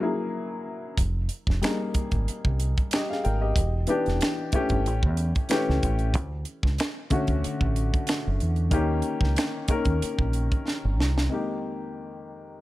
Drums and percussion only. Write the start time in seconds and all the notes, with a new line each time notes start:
0.97 kick, closed hi-hat
1.29 closed hi-hat
1.47 kick, snare
1.63 finger snap, snare, closed hi-hat
1.94 kick, closed hi-hat
2.11 kick, closed hi-hat
2.28 closed hi-hat
2.45 kick
2.60 closed hi-hat
2.77 kick, closed hi-hat
2.91 finger snap, snare, closed hi-hat
3.12 snare
3.25 closed hi-hat
3.56 kick, closed hi-hat
3.87 closed hi-hat
4.06 snare, closed hi-hat
4.21 finger snap, snare, closed hi-hat
4.52 kick, closed hi-hat
4.69 kick, closed hi-hat
4.86 closed hi-hat
5.03 kick
5.17 closed hi-hat
5.35 kick, closed hi-hat
5.49 finger snap, snare, closed hi-hat
5.70 snare
5.83 kick, closed hi-hat
5.99 closed hi-hat
6.14 kick, closed hi-hat
6.45 closed hi-hat
6.63 kick, snare
6.78 finger snap, snare, closed hi-hat
7.10 kick, closed hi-hat
7.27 kick, closed hi-hat
7.44 closed hi-hat
7.61 kick
7.76 closed hi-hat
7.93 kick, closed hi-hat
8.07 finger snap, snare, closed hi-hat
8.40 closed hi-hat
8.56 closed hi-hat
8.71 kick, closed hi-hat
9.02 closed hi-hat
9.21 kick, snare
9.36 finger snap, snare, closed hi-hat
9.68 kick, closed hi-hat
9.85 kick, closed hi-hat
10.02 closed hi-hat
10.19 kick
10.33 closed hi-hat
10.52 kick, closed hi-hat
10.68 snare
11.00 snare
11.18 snare